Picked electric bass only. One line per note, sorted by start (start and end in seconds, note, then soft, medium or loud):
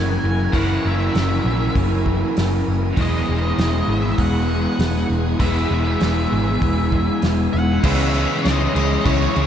0.00 0.17 F#1 medium
0.24 0.47 F#1 medium
0.53 0.77 F#1 medium
0.85 1.08 F#1 medium
1.15 1.38 F#1 medium
1.45 1.68 A#1 medium
1.75 2.22 F#1 medium
2.38 2.61 F#1 medium
2.68 2.91 F#1 medium
2.97 3.21 E1 medium
3.29 3.52 E1 medium
3.58 3.82 E1 medium
3.88 4.12 G#1 medium
4.19 4.66 E1 medium
4.79 5.03 E1 medium
5.10 5.34 E1 medium
5.40 5.64 E1 medium
5.71 5.95 E1 medium
6.02 6.25 E1 medium
6.32 6.56 G#1 medium
6.62 7.09 E1 medium
7.23 7.47 E1 medium
7.54 7.78 E1 medium
7.84 8.25 C#2 medium
8.45 8.66 C#2 medium
8.75 8.96 C#2 medium
9.05 9.26 C#2 medium
9.37 9.47 C#2 loud